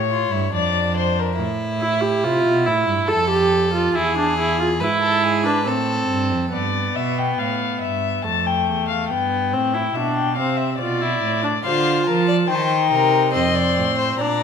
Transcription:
0.00 0.31 A2 medium
0.00 0.54 C#5 medium
0.11 0.33 F4 medium
0.32 0.53 G2 medium
0.32 0.52 E4 medium
0.53 1.40 F2 medium
0.53 1.36 D4 medium
0.53 0.96 D5 medium
0.97 1.21 C5 medium
1.20 1.40 A#4 medium
1.37 2.26 A2 medium
1.37 3.05 E4 medium
1.81 2.02 E4 medium
2.01 2.25 G4 medium
2.24 2.44 C3 medium
2.24 2.67 F4 loud
2.45 2.69 B2 medium
2.66 2.87 A2 medium
2.66 3.10 E4 medium
2.88 2.96 G2 medium
3.08 3.94 F2 medium
3.08 3.29 A4 medium
3.08 3.93 A4 medium
3.30 3.72 G4 medium
3.73 3.97 F4 medium
3.95 4.82 E2 medium
3.95 4.17 E4 loud
3.95 4.82 G#4 medium
4.18 4.38 D4 medium
4.39 4.59 E4 medium
4.60 4.68 F4 medium
4.80 5.67 G#2 medium
4.80 5.44 E4 medium
4.80 5.02 B4 medium
5.02 5.25 A4 medium
5.24 5.47 G#4 medium
5.45 5.66 D4 medium
5.45 5.69 B4 medium
5.66 6.08 A2 medium
5.66 6.51 C4 medium
5.66 6.53 A4 medium
6.08 6.32 G2 medium
6.31 6.53 F2 medium
6.53 6.93 G2 medium
6.53 8.26 B3 medium
6.53 6.97 D5 medium
6.96 7.38 B2 medium
6.96 7.20 E5 medium
7.18 7.40 G5 medium
7.38 7.81 A2 medium
7.38 7.80 F5 medium
7.81 8.24 G2 medium
7.81 8.23 E5 medium
8.24 8.69 F2 medium
8.24 9.12 A3 medium
8.24 8.48 A5 medium
8.46 8.88 G5 medium
8.68 9.10 E2 medium
8.88 9.09 F5 medium
9.09 9.54 G2 medium
9.09 9.55 B3 medium
9.09 9.96 G5 medium
9.53 9.94 A2 medium
9.53 9.75 C4 medium
9.74 9.97 E4 medium
9.94 10.39 B2 medium
9.94 10.38 D4 medium
9.94 10.16 E5 medium
10.16 10.36 G5 medium
10.36 10.80 C3 medium
10.36 10.80 C4 medium
10.36 10.58 F5 medium
10.57 10.78 E5 medium
10.79 11.22 B2 medium
10.79 11.03 F4 medium
10.79 11.62 D5 medium
11.02 11.43 E4 medium
11.23 11.64 A2 medium
11.43 11.51 D4 medium
11.65 12.06 D3 medium
11.65 12.48 F4 medium
11.65 12.09 C5 medium
11.65 12.06 F5 medium
12.06 12.49 F3 medium
12.06 12.27 A#4 medium
12.06 12.49 A5 medium
12.28 12.36 D5 medium
12.47 12.91 D#3 medium
12.47 13.33 D#4 medium
12.47 12.90 C5 medium
12.47 12.56 G5 medium
12.54 12.63 A5 medium
12.61 13.33 G5 medium
12.91 13.36 C3 medium
12.91 13.33 A#4 medium
13.33 13.79 F2 medium
13.33 14.22 C4 medium
13.33 13.57 D#5 medium
13.33 14.18 C6 medium
13.55 13.98 D5 medium
13.78 14.20 A2 medium
13.98 14.20 C5 medium
14.20 14.43 A#2 medium
14.20 14.43 D4 medium
14.20 14.43 D5 medium
14.20 14.43 A#5 medium

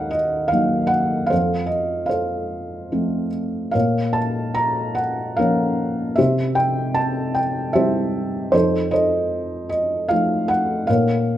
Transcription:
0.00 1.27 D#2 medium
0.00 1.33 F#4 medium
0.00 1.33 A#4 medium
0.00 0.11 D#5 medium
0.00 0.48 F5 medium
0.00 0.13 F#5 medium
0.11 0.48 D#5 medium
0.48 0.90 F5 medium
0.52 1.28 F#3 soft
0.52 1.28 A#3 soft
0.52 1.28 D#4 soft
0.87 1.30 F#5 medium
1.26 2.08 C5 medium
1.26 1.66 F5 medium
1.30 3.71 F2 medium
1.30 2.08 A4 soft
1.66 2.10 D#5 medium
2.06 3.28 A4 soft
2.06 3.28 C5 soft
2.06 3.26 F5 medium
2.92 3.72 F3 soft
2.92 3.72 A3 soft
2.92 3.73 C4 soft
3.71 6.15 A#2 medium
3.71 4.94 A#4 soft
3.71 4.94 C#5 medium
3.71 4.16 F5 medium
4.13 4.53 A5 medium
4.54 4.98 A#5 medium
4.95 5.38 F#5 medium
5.37 6.16 F3 soft
5.37 6.17 A#3 soft
5.37 6.17 C#4 soft
5.37 6.15 A#4 soft
5.37 6.15 C#5 medium
5.37 6.14 F5 medium
6.16 8.50 C3 medium
6.16 7.33 G4 medium
6.16 7.33 C5 medium
6.16 6.54 E5 medium
6.55 6.98 G5 medium
6.94 7.37 A5 medium
7.34 7.72 G5 medium
7.73 8.52 G3 soft
7.73 8.52 C4 soft
7.73 8.52 E4 soft
7.73 8.50 G4 medium
7.73 8.50 C5 medium
7.73 8.55 E5 medium
8.52 10.84 F2 medium
8.52 9.68 D#4 medium
8.52 8.92 A4 medium
8.52 8.92 C5 medium
8.91 10.07 A4 medium
8.91 10.07 C5 medium
8.91 9.68 D#5 medium
9.69 10.11 D#5 medium
10.09 10.86 F3 soft
10.09 10.86 A3 soft
10.09 10.86 D#4 medium
10.09 10.50 F5 medium
10.48 10.89 F#5 medium
10.87 11.38 A#2 medium
10.87 11.38 A#4 medium
10.87 11.38 C#5 medium
10.87 11.38 F5 medium

